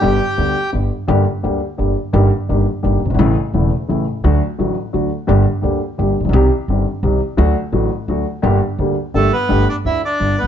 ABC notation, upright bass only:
X:1
M:3/4
L:1/16
Q:1/4=171
K:G
V:1 name="Upright bass" clef=bass
G,,,3/2 z2 z/2 D,,3/2 z2 z/2 G,,,3/2 z2 z/2 | [K:Gm] G,,,3/2 z2 z/2 D,,3/2 z2 z/2 G,,,3/2 z2 z/2 | G,,,3/2 z2 z/2 G,,,3/2 z2 z/2 G,,,3/2 z ^F,,,/2 G,,,/2 _A,,,/2 | A,,,3/2 z2 z/2 =E,,,3/2 z2 z/2 A,,,3/2 z2 z/2 |
D,,3/2 z2 z/2 A,,,3/2 z2 z/2 D,,3/2 z2 z/2 | G,,,3/2 z2 z/2 D,,3/2 z2 z/2 G,,,3/2 z A,,,/2 B,,,/2 =B,,,/2 | C,,3/2 z2 z/2 G,,,3/2 z2 z/2 C,,3/2 z2 z/2 | D,,3/2 z2 z/2 A,,,3/2 z2 z/2 D,,3/2 z2 z/2 |
G,,,3/2 z2 z/2 D,,3/2 z2 z/2 G,,,3/2 z2 z/2 | [K:G] G,,,3/2 z2 z/2 D,,3/2 z2 z/2 G,,,3/2 z A,,,/2 z |]